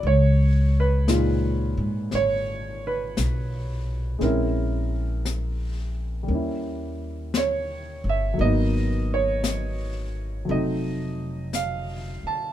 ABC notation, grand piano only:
X:1
M:4/4
L:1/8
Q:"Swing" 1/4=57
K:C#dor
V:1 name="Grand piano"
c B2 z c B2 z | A6 c e | d c2 z _e z =f =a |]
V:2 name="Grand piano"
z2 [A,,G,D^E]6 | [G,^B,CE]4 [=G,A,CE]4 | [F,A,B,D]4 [_G,=A,=C_E]4 |]